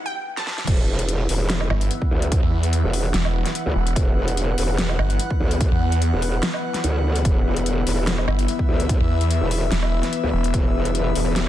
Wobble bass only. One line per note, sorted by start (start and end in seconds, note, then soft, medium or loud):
0.67 1.28 E1 medium
1.29 1.69 E1 medium
2.11 2.41 D2 loud
2.84 3.13 E1 loud
3.66 3.74 D2 loud
3.96 4.56 E1 medium
4.58 4.97 E1 medium
5.40 5.70 D2 medium
6.13 6.41 E1 loud
6.84 7.23 D2 loud
7.25 7.85 E1 medium
7.87 8.26 E1 medium
8.69 8.99 D2 medium
9.41 9.70 E1 loud
10.24 10.32 D2 loud
10.54 11.14 E1 medium
11.15 11.49 E1 medium